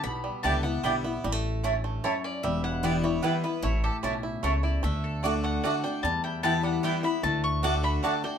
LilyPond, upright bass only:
\new Staff \with { instrumentName = "Upright bass" } { \clef bass \time 3/4 \key e \dorian \tempo 4 = 150 b,,4 cis,4 b,,4 | a,,2. | e,,2. | a,,4 b,,4 cis,4 |
d,2. | e,2. | d,2. | }